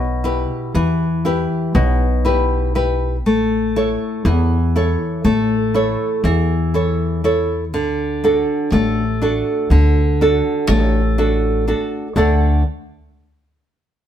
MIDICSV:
0, 0, Header, 1, 3, 480
1, 0, Start_track
1, 0, Key_signature, 2, "major"
1, 0, Tempo, 1000000
1, 1560, Time_signature, 9, 3, 24, 8
1, 3474, Tempo, 983607
1, 6809, End_track
2, 0, Start_track
2, 0, Title_t, "Nylon-string guitar"
2, 0, Program_c, 0, 24
2, 0, Note_on_c, 0, 47, 68
2, 115, Note_on_c, 0, 64, 55
2, 118, Note_on_c, 0, 67, 50
2, 120, Note_on_c, 0, 71, 60
2, 343, Note_off_c, 0, 47, 0
2, 360, Note_on_c, 0, 52, 74
2, 501, Note_off_c, 0, 64, 0
2, 503, Note_off_c, 0, 67, 0
2, 504, Note_off_c, 0, 71, 0
2, 599, Note_on_c, 0, 64, 57
2, 602, Note_on_c, 0, 67, 52
2, 605, Note_on_c, 0, 71, 62
2, 826, Note_off_c, 0, 52, 0
2, 839, Note_on_c, 0, 47, 74
2, 984, Note_off_c, 0, 64, 0
2, 986, Note_off_c, 0, 67, 0
2, 987, Note_off_c, 0, 71, 0
2, 1078, Note_on_c, 0, 64, 57
2, 1083, Note_on_c, 0, 67, 50
2, 1083, Note_on_c, 0, 71, 59
2, 1305, Note_off_c, 0, 47, 0
2, 1316, Note_off_c, 0, 64, 0
2, 1316, Note_off_c, 0, 67, 0
2, 1318, Note_off_c, 0, 71, 0
2, 1321, Note_on_c, 0, 64, 56
2, 1324, Note_on_c, 0, 67, 51
2, 1324, Note_on_c, 0, 71, 59
2, 1513, Note_off_c, 0, 64, 0
2, 1513, Note_off_c, 0, 67, 0
2, 1514, Note_off_c, 0, 71, 0
2, 1566, Note_on_c, 0, 57, 67
2, 1806, Note_on_c, 0, 64, 53
2, 1807, Note_on_c, 0, 69, 48
2, 1809, Note_on_c, 0, 73, 55
2, 2028, Note_off_c, 0, 57, 0
2, 2044, Note_on_c, 0, 52, 73
2, 2187, Note_off_c, 0, 64, 0
2, 2187, Note_off_c, 0, 69, 0
2, 2189, Note_off_c, 0, 73, 0
2, 2283, Note_on_c, 0, 64, 53
2, 2285, Note_on_c, 0, 69, 49
2, 2287, Note_on_c, 0, 73, 63
2, 2506, Note_off_c, 0, 52, 0
2, 2518, Note_on_c, 0, 57, 74
2, 2664, Note_off_c, 0, 64, 0
2, 2665, Note_off_c, 0, 69, 0
2, 2667, Note_off_c, 0, 73, 0
2, 2757, Note_on_c, 0, 64, 54
2, 2759, Note_on_c, 0, 69, 51
2, 2762, Note_on_c, 0, 73, 60
2, 2981, Note_off_c, 0, 57, 0
2, 2999, Note_on_c, 0, 52, 74
2, 3139, Note_off_c, 0, 64, 0
2, 3140, Note_off_c, 0, 69, 0
2, 3142, Note_off_c, 0, 73, 0
2, 3236, Note_on_c, 0, 64, 53
2, 3237, Note_on_c, 0, 69, 51
2, 3241, Note_on_c, 0, 73, 58
2, 3460, Note_off_c, 0, 52, 0
2, 3470, Note_off_c, 0, 64, 0
2, 3472, Note_off_c, 0, 69, 0
2, 3473, Note_off_c, 0, 73, 0
2, 3476, Note_on_c, 0, 64, 52
2, 3478, Note_on_c, 0, 69, 47
2, 3479, Note_on_c, 0, 73, 57
2, 3668, Note_off_c, 0, 64, 0
2, 3669, Note_off_c, 0, 69, 0
2, 3670, Note_off_c, 0, 73, 0
2, 3718, Note_on_c, 0, 50, 69
2, 3962, Note_on_c, 0, 62, 51
2, 3964, Note_on_c, 0, 66, 45
2, 3966, Note_on_c, 0, 69, 56
2, 4185, Note_off_c, 0, 50, 0
2, 4201, Note_on_c, 0, 57, 68
2, 4346, Note_off_c, 0, 62, 0
2, 4347, Note_off_c, 0, 66, 0
2, 4348, Note_off_c, 0, 69, 0
2, 4439, Note_on_c, 0, 62, 53
2, 4442, Note_on_c, 0, 66, 55
2, 4444, Note_on_c, 0, 69, 63
2, 4667, Note_off_c, 0, 57, 0
2, 4681, Note_on_c, 0, 50, 74
2, 4824, Note_off_c, 0, 62, 0
2, 4826, Note_off_c, 0, 66, 0
2, 4827, Note_off_c, 0, 69, 0
2, 4925, Note_on_c, 0, 62, 55
2, 4928, Note_on_c, 0, 66, 49
2, 4930, Note_on_c, 0, 69, 64
2, 5147, Note_off_c, 0, 50, 0
2, 5162, Note_on_c, 0, 57, 65
2, 5308, Note_off_c, 0, 62, 0
2, 5308, Note_off_c, 0, 66, 0
2, 5310, Note_off_c, 0, 69, 0
2, 5399, Note_on_c, 0, 62, 53
2, 5400, Note_on_c, 0, 66, 51
2, 5403, Note_on_c, 0, 69, 55
2, 5627, Note_off_c, 0, 57, 0
2, 5634, Note_off_c, 0, 62, 0
2, 5635, Note_off_c, 0, 66, 0
2, 5638, Note_off_c, 0, 69, 0
2, 5640, Note_on_c, 0, 62, 50
2, 5642, Note_on_c, 0, 66, 47
2, 5644, Note_on_c, 0, 69, 58
2, 5831, Note_off_c, 0, 62, 0
2, 5832, Note_off_c, 0, 66, 0
2, 5834, Note_off_c, 0, 69, 0
2, 5876, Note_on_c, 0, 50, 56
2, 5879, Note_on_c, 0, 57, 49
2, 5880, Note_on_c, 0, 62, 49
2, 5883, Note_on_c, 0, 69, 48
2, 5885, Note_on_c, 0, 78, 48
2, 5886, Note_on_c, 0, 74, 54
2, 6100, Note_off_c, 0, 50, 0
2, 6102, Note_off_c, 0, 57, 0
2, 6102, Note_off_c, 0, 62, 0
2, 6104, Note_off_c, 0, 69, 0
2, 6104, Note_off_c, 0, 78, 0
2, 6105, Note_off_c, 0, 74, 0
2, 6809, End_track
3, 0, Start_track
3, 0, Title_t, "Upright bass"
3, 0, Program_c, 1, 32
3, 0, Note_on_c, 1, 35, 92
3, 210, Note_off_c, 1, 35, 0
3, 357, Note_on_c, 1, 40, 87
3, 694, Note_off_c, 1, 40, 0
3, 839, Note_on_c, 1, 35, 101
3, 1561, Note_off_c, 1, 35, 0
3, 1561, Note_on_c, 1, 33, 107
3, 1896, Note_off_c, 1, 33, 0
3, 2039, Note_on_c, 1, 40, 103
3, 2375, Note_off_c, 1, 40, 0
3, 2518, Note_on_c, 1, 33, 84
3, 2852, Note_off_c, 1, 33, 0
3, 2994, Note_on_c, 1, 40, 100
3, 3716, Note_off_c, 1, 40, 0
3, 3716, Note_on_c, 1, 38, 102
3, 4053, Note_off_c, 1, 38, 0
3, 4197, Note_on_c, 1, 33, 99
3, 4535, Note_off_c, 1, 33, 0
3, 4676, Note_on_c, 1, 38, 89
3, 5014, Note_off_c, 1, 38, 0
3, 5154, Note_on_c, 1, 33, 98
3, 5660, Note_off_c, 1, 33, 0
3, 5875, Note_on_c, 1, 38, 91
3, 6099, Note_off_c, 1, 38, 0
3, 6809, End_track
0, 0, End_of_file